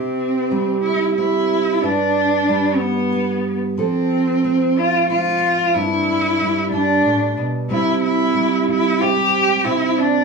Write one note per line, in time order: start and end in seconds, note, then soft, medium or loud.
0.00 1.82 C3 medium
0.00 0.80 C4 medium
0.00 1.82 G4 soft
0.51 1.78 G3 soft
0.83 1.14 E4 medium
1.16 1.79 C4 soft
1.16 1.83 E4 medium
1.82 3.79 G2 medium
1.82 2.81 D4 medium
1.82 3.75 B4 soft
2.49 3.75 G3 medium
2.79 3.53 B3 medium
3.12 3.74 B3 soft
3.78 5.74 F3 medium
3.78 4.80 C4 medium
3.78 5.70 A4 medium
4.44 5.09 C4 soft
4.78 5.09 F4 medium
5.09 5.71 C4 soft
5.09 5.76 F4 medium
5.74 6.71 G2 medium
5.74 7.70 D4 soft
5.74 6.70 E4 medium
6.40 7.66 G3 soft
6.71 7.04 G2 medium
6.71 7.41 D4 medium
7.05 7.37 A2 soft
7.37 7.70 B2 soft
7.69 9.64 C3 soft
7.69 8.34 G3 soft
7.69 9.01 C4 soft
7.69 8.00 E4 medium
8.04 8.64 E4 medium
8.35 9.61 G3 medium
8.71 9.03 E4 medium
9.01 9.65 C4 soft
9.01 9.66 G4 medium
9.65 10.24 C3 medium
9.65 10.24 C4 soft
9.65 10.00 E4 medium
9.98 10.24 D4 medium